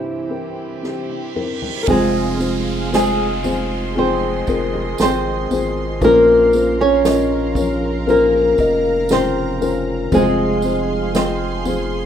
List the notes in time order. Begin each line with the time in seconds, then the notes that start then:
Already playing: C2 G2 C3 E3 G3 C4 E4 G4, reverse cymbal
0.29 C4 E4 A#4
0.82 C4 E4 G4, snare
1.09 high tom
1.34 C4 E4 A#4, mid tom
1.62 floor tom
1.83 A#4
1.87 F1 F2 C3 F3 G#3 C4 F4 G#4 C5 F5 C6, kick, floor tom, crash, tambourine, downlifter
2.39 C4 F4 G#4 C5, tambourine
2.91 F3 G#3 C4 F4 G#4 C5, snare, tambourine
3.43 C4 F4 G#4 C5, floor tom, tambourine
3.95 F3 G#3 C4 F4 G#4 C5 D#5, floor tom
4.47 F1 C4 F4 G#4 A#4, kick, tambourine
4.73 floor tom
4.98 G#1 F3 G#3 C4 F4 G#4 C5, snare, tambourine
5.50 G#1 C4 F4 G#4 C5, floor tom, tambourine
6.01 A#1 A#2 F3 A#3 C4 C#4 F4 A#4 C5 F5 A#5, kick, floor tom, tambourine
6.53 C#4 F4 A#4 C5, tambourine
6.81 C#4 C#5
7.04 F3 C#4 F4 A#4 D#5, snare, tambourine
7.55 C#4 F4 A#4 C#5, kick, floor tom, tambourine
8.06 F3 A#3 C4 C#4 F4 A#4 C5 A#5, floor tom, tambourine
8.58 F1 C#4 F4 A#4 D#5, kick, tambourine
9.09 C#3 F3 C4 F4 A#4 C5, snare, tambourine
9.13 F4
9.61 C#4 F4 A#4 C5, floor tom, tambourine
10.11 F1 F2 C3 F3 G#3 C4 F4 G#4 C5 F5 C6, kick, floor tom, tambourine
10.16 C4 F4
10.62 C4 F4 G#4 C5, tambourine
11.14 C4 F4 G#4 C5 D#5, snare, tambourine
11.65 C4 F4 G#4 C5, floor tom, tambourine